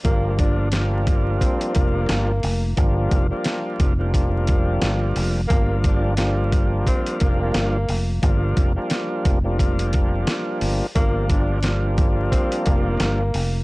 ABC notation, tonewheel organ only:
X:1
M:4/4
L:1/16
Q:"Swing 16ths" 1/4=88
K:Gm
V:1 name="Tonewheel organ"
[F,G,B,DF]4 [F,G,B,DF]8- [F,G,B,DF] z3 | [F,G,B,DF]3 [F,G,B,DF]4 [F,G,B,DF] [F,G,B,DF]6- [F,G,B,DF] z | [F,G,B,DF]4 [F,G,B,DF]8- [F,G,B,DF] z3 | [F,G,B,DF]3 [F,G,B,DF]4 [F,G,B,DF] [F,G,B,DF]6- [F,G,B,DF] z |
[F,G,B,DF]4 [F,G,B,DF]8- [F,G,B,DF] z3 |]